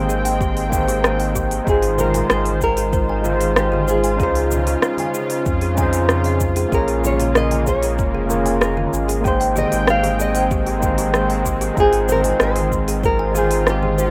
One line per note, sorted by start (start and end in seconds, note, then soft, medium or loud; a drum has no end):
0.00 1.60 G#1 medium
0.00 4.16 D#3 medium
0.00 0.69 G#3 medium
0.00 6.68 G#3 medium
0.00 0.66 A#3 medium
0.00 1.64 C4 medium
0.00 0.67 D#4 medium
0.00 0.70 C5 medium
0.00 0.68 G5 medium
0.00 1.64 G5 loud
0.09 0.18 G#4 medium
0.09 cabasa medium
0.25 0.39 G5 medium
0.25 open hi-hat medium
0.25 cabasa soft
0.41 0.56 G4 medium
0.41 kick loud
0.41 cabasa soft
0.57 open hi-hat soft
0.70 1.62 A#3 medium
0.70 1.63 D#4 medium
0.70 kick loud
0.70 high conga medium
0.70 cabasa medium
0.74 1.63 G#3 medium
0.74 1.66 C5 medium
0.74 1.64 G5 medium
0.88 0.96 G4 medium
0.88 open hi-hat medium
0.88 cabasa soft
1.04 1.12 G#4 medium
1.04 cross-stick loud
1.04 cabasa soft
1.20 1.34 G5 medium
1.20 open hi-hat soft
1.35 1.51 G4 medium
1.35 kick medium
1.35 cabasa medium
1.51 open hi-hat medium
1.51 cabasa soft
1.64 2.24 G#1 loud
1.64 3.20 G#3 medium
1.64 3.20 D#4 medium
1.64 9.21 F4 loud
1.64 3.21 F4 medium
1.64 6.68 C5 medium
1.64 kick loud
1.64 cabasa soft
1.69 2.01 G#4 loud
1.69 3.23 C5 medium
1.82 1.91 G#4 medium
1.82 open hi-hat soft
1.98 2.30 A#4 medium
1.98 2.07 C5 medium
1.98 high conga medium
1.98 low conga medium
1.98 cabasa medium
2.14 2.29 G#5 medium
2.14 open hi-hat medium
2.14 low conga medium
2.14 cabasa soft
2.30 4.21 G#1 medium
2.30 2.45 G#4 medium
2.30 2.60 C5 loud
2.30 cross-stick loud
2.30 cabasa soft
2.46 open hi-hat soft
2.46 high conga medium
2.61 3.53 A#4 loud
2.61 kick medium
2.61 cabasa medium
2.77 2.86 G#4 medium
2.77 open hi-hat medium
2.77 cabasa soft
2.93 3.02 C5 medium
2.93 kick loud
2.93 cabasa soft
3.09 3.23 G#5 medium
3.22 4.14 G#3 medium
3.22 4.15 D#4 medium
3.22 4.16 F4 medium
3.22 3.40 G#4 medium
3.22 high conga medium
3.22 cabasa medium
3.30 4.18 C5 medium
3.41 open hi-hat medium
3.41 cabasa soft
3.56 3.90 G4 medium
3.56 cross-stick loud
3.56 cabasa soft
3.72 3.81 G#4 medium
3.72 high conga medium
3.88 4.22 G#4 medium
3.88 3.97 C5 medium
3.88 cabasa medium
4.04 4.18 G#5 medium
4.04 open hi-hat medium
4.04 cabasa soft
4.16 4.76 C#2 medium
4.16 6.69 C#3 medium
4.16 5.72 C#4 medium
4.16 5.73 D#4 medium
4.16 5.74 F4 medium
4.16 4.35 G#4 medium
4.16 kick loud
4.16 cabasa soft
4.22 5.75 G#4 medium
4.22 5.12 C5 loud
4.22 5.76 C5 medium
4.35 open hi-hat soft
4.51 high conga medium
4.51 low conga medium
4.51 cabasa medium
4.67 4.76 G#4 medium
4.67 open hi-hat medium
4.67 cabasa soft
4.82 4.92 C5 medium
4.82 cross-stick medium
4.82 cabasa soft
4.97 5.13 G#5 medium
4.97 open hi-hat soft
4.97 high conga medium
5.14 5.30 G#4 medium
5.14 cabasa medium
5.30 open hi-hat soft
5.30 cabasa soft
5.46 6.66 F2 loud
5.46 kick loud
5.46 cabasa soft
5.61 5.70 G#4 medium
5.61 open hi-hat soft
5.75 6.67 C#4 medium
5.75 6.68 D#4 medium
5.75 5.92 G#5 medium
5.75 kick loud
5.75 high conga medium
5.75 cabasa medium
5.79 6.69 F4 medium
5.79 6.70 G#4 medium
5.79 6.71 C5 loud
5.93 open hi-hat medium
5.93 cabasa soft
6.09 6.24 C5 medium
6.09 cross-stick medium
6.09 cabasa soft
6.24 6.40 F5 medium
6.24 open hi-hat soft
6.40 kick medium
6.40 cabasa medium
6.56 6.71 G#4 medium
6.56 open hi-hat medium
6.56 cabasa soft
6.69 8.00 A#1 loud
6.69 9.22 C#3 medium
6.69 14.11 G#3 medium
6.69 8.25 A#3 medium
6.69 9.22 A#3 medium
6.69 8.26 C#4 medium
6.69 6.87 G#4 medium
6.69 kick loud
6.69 cabasa soft
6.73 8.27 F4 medium
6.73 8.28 G#4 medium
6.73 7.06 A#4 medium
6.77 8.29 C#5 medium
6.88 6.97 G#4 medium
6.88 open hi-hat soft
7.04 7.37 C#5 medium
7.04 high conga medium
7.04 low conga medium
7.04 cabasa medium
7.20 7.28 G#4 medium
7.20 open hi-hat medium
7.20 low conga medium
7.20 cabasa soft
7.35 7.44 A#4 medium
7.35 7.66 D#5 loud
7.35 cross-stick medium
7.35 cabasa soft
7.51 7.66 G#5 medium
7.51 open hi-hat soft
7.51 high conga medium
7.67 7.82 G#4 medium
7.67 8.59 C#5 medium
7.67 kick medium
7.67 cabasa medium
7.83 7.92 G#4 medium
7.83 open hi-hat soft
7.83 cabasa soft
7.99 8.87 F1 loud
7.99 kick loud
7.99 cabasa soft
8.15 8.23 G#4 medium
8.26 9.19 A#3 medium
8.26 9.20 C#4 medium
8.26 9.21 F4 medium
8.30 9.22 G#4 medium
8.30 8.39 A#4 medium
8.30 high conga medium
8.30 cabasa medium
8.34 9.23 C#5 medium
8.46 8.60 G#5 medium
8.46 open hi-hat medium
8.46 cabasa soft
8.61 8.76 G#4 medium
8.61 8.92 A#4 medium
8.61 cross-stick medium
8.61 cabasa soft
8.77 8.86 G#4 medium
8.77 high conga medium
8.93 9.66 G#1 medium
8.93 cabasa medium
9.08 9.17 G#4 medium
9.08 open hi-hat medium
9.08 cabasa soft
9.21 10.77 A#3 medium
9.21 10.78 D#4 medium
9.21 9.33 G#4 medium
9.25 14.11 D#3 medium
9.25 10.80 G#3 medium
9.25 14.11 C4 medium
9.25 9.56 C5 medium
9.25 10.81 C5 medium
9.25 10.79 G5 medium
9.25 11.75 G5 loud
9.25 kick loud
9.25 cabasa soft
9.40 9.55 G5 medium
9.40 open hi-hat soft
9.56 9.71 G4 medium
9.56 9.87 D#5 medium
9.56 high conga medium
9.56 low conga medium
9.56 cabasa medium
9.72 11.71 G#1 medium
9.72 9.81 G4 medium
9.72 open hi-hat medium
9.72 cabasa soft
9.87 10.21 F5 loud
9.87 cross-stick loud
9.87 cabasa soft
10.03 10.12 G4 medium
10.03 open hi-hat soft
10.03 high conga medium
10.20 10.28 G#4 medium
10.20 11.15 D#5 medium
10.20 cabasa medium
10.35 10.50 G5 medium
10.35 open hi-hat medium
10.35 cabasa soft
10.51 10.66 G4 medium
10.51 kick loud
10.51 cabasa soft
10.66 10.76 G4 medium
10.66 open hi-hat soft
10.79 11.72 A#3 medium
10.79 11.73 D#4 medium
10.79 kick loud
10.79 high conga medium
10.79 cabasa medium
10.83 11.73 G#3 medium
10.83 11.76 C5 medium
10.83 11.74 G5 medium
10.98 11.07 G4 medium
10.98 open hi-hat medium
10.98 cabasa soft
11.14 11.23 G#4 medium
11.14 11.44 C5 medium
11.14 cross-stick medium
11.14 cabasa soft
11.30 11.44 G5 medium
11.30 open hi-hat soft
11.46 11.60 G4 medium
11.46 kick medium
11.46 cabasa medium
11.61 11.70 G4 medium
11.61 open hi-hat medium
11.61 cabasa soft
11.74 12.34 G#1 medium
11.74 13.30 G#3 medium
11.74 13.31 D#4 medium
11.74 14.11 F4 loud
11.74 13.32 F4 medium
11.74 kick loud
11.74 cabasa soft
11.80 12.08 G#4 loud
11.80 13.34 C5 loud
11.93 12.02 G#4 medium
11.93 open hi-hat soft
12.09 12.20 A#4 loud
12.09 12.18 C5 medium
12.09 high conga medium
12.09 low conga medium
12.09 cabasa medium
12.24 12.39 G#5 medium
12.24 open hi-hat medium
12.24 low conga medium
12.24 cabasa soft
12.40 14.11 G#1 medium
12.40 12.55 G#4 medium
12.40 13.05 C5 loud
12.40 cross-stick medium
12.40 cabasa soft
12.56 12.65 G#4 medium
12.56 open hi-hat soft
12.56 high conga medium
12.72 kick medium
12.72 cabasa medium
12.88 12.97 G#4 medium
12.88 open hi-hat medium
12.88 cabasa soft
13.03 13.37 A#4 loud
13.03 13.12 C5 medium
13.03 kick loud
13.03 cabasa soft
13.19 13.34 G#5 medium
13.31 14.11 G#3 medium
13.31 14.11 D#4 medium
13.31 14.11 F4 medium
13.31 13.50 G#4 medium
13.31 high conga medium
13.35 13.69 G#4 medium
13.35 14.11 C5 medium
13.35 cabasa medium
13.51 13.60 G#4 medium
13.51 open hi-hat medium
13.51 cabasa soft
13.67 14.01 G4 medium
13.67 cross-stick medium
13.67 cabasa soft
13.82 13.91 G#4 medium
13.82 high conga medium
13.98 14.11 F4 medium
13.98 14.07 C5 medium
13.98 cabasa medium